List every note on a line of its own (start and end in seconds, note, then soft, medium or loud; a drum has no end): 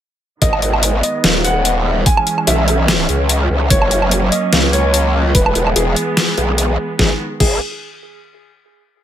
0.42 1.02 G#1 loud
0.42 2.04 D#3 medium
0.42 3.67 G#3 medium
0.42 2.04 B3 medium
0.42 0.96 D#5 medium
0.42 kick loud
0.42 closed hi-hat medium
0.53 low woodblock medium
0.62 closed hi-hat medium
0.73 low woodblock medium
0.83 closed hi-hat medium
1.03 1.35 D#5 medium
1.03 closed hi-hat medium
1.24 2.05 D#1 loud
1.24 snare loud
1.24 closed hi-hat medium
1.44 1.99 F#5 medium
1.44 closed hi-hat medium
1.65 closed hi-hat medium
2.06 3.69 E3 medium
2.06 3.69 C#4 medium
2.06 2.37 G#5 medium
2.06 kick loud
2.06 closed hi-hat medium
2.17 low woodblock medium
2.27 closed hi-hat medium
2.38 low woodblock soft
2.47 3.07 B1 medium
2.47 3.63 E5 medium
2.47 closed hi-hat medium
2.68 closed hi-hat medium
2.88 snare loud
2.88 closed hi-hat medium
3.09 3.48 C#2 medium
3.09 closed hi-hat medium
3.29 closed hi-hat medium
3.50 3.69 C#2 loud
3.70 4.31 F#1 medium
3.70 5.33 F#3 medium
3.70 5.33 A#3 medium
3.70 5.33 C#4 medium
3.70 4.25 C#5 loud
3.70 kick loud
3.70 closed hi-hat medium
3.82 low woodblock medium
3.91 closed hi-hat medium
4.02 low woodblock soft
4.11 closed hi-hat medium
4.32 4.63 D#5 medium
4.32 closed hi-hat medium
4.53 5.33 C#2 loud
4.53 snare loud
4.53 closed hi-hat medium
4.73 5.27 C#5 loud
4.73 closed hi-hat medium
4.94 closed hi-hat medium
5.35 5.54 E1 loud
5.35 6.97 E3 medium
5.35 6.97 G#3 medium
5.35 6.98 B3 medium
5.35 5.66 B4 medium
5.35 kick loud
5.35 closed hi-hat medium
5.46 low woodblock medium
5.55 5.74 E1 loud
5.55 closed hi-hat medium
5.67 low woodblock medium
5.76 5.95 E1 loud
5.76 6.92 G#4 medium
5.76 closed hi-hat medium
5.96 closed hi-hat medium
6.17 snare loud
6.17 closed hi-hat medium
6.38 6.77 B1 medium
6.38 closed hi-hat soft
6.58 closed hi-hat medium
6.99 7.11 G#1 loud
6.99 7.18 D#3 medium
6.99 7.18 G#3 medium
6.99 7.18 B3 medium
6.99 7.11 G#4 medium
6.99 kick loud
6.99 snare medium
7.40 7.59 G#1 medium
7.40 7.56 G#4 medium
7.40 kick loud
7.40 crash medium